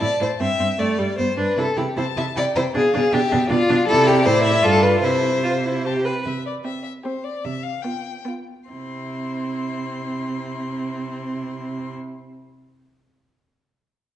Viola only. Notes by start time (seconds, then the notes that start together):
0.00 E4
0.20 E4
0.40 C4
0.59 C4
0.79 A3
0.99 G3
1.18 B3
1.37 D4
1.58 E4
1.77 E4
1.97 E4
2.17 E4
2.36 E4
2.56 E4
2.74 D4
2.94 D4
3.13 D4
3.32 D4
3.49 D4
3.70 D4
3.88 E4
4.25 E4
4.63 F4
5.04 E4
5.44 F4
5.65 E4
5.86 G4
6.05 B4
6.65 C4
7.05 C4
7.85 B3
8.26 B3
8.70 C4